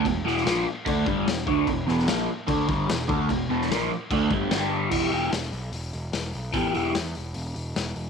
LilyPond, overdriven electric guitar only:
\new Staff \with { instrumentName = "Overdriven electric guitar" } { \clef bass \time 4/4 \key e \minor \tempo 4 = 148 <e, b,>8 <e, b, e>8 <ais, f ais>8 r8 <d a d'>8 <g, d g>8 <e, b,>8 <d a d'>8 | <e, b,>8 <e, b, e>8 <ais, f ais>8 r8 <d a d'>8 <g, d g>8 <e, b,>8 <d a d'>8 | <e, b,>8 <e, b, e>8 <ais, f ais>8 r8 <d a d'>8 <g, d g>8 <g, d g>4 | <e b e' g'>8 <e b e' g'>8 r2. |
<e b e' g'>8 <e b e' g'>8 r2. | }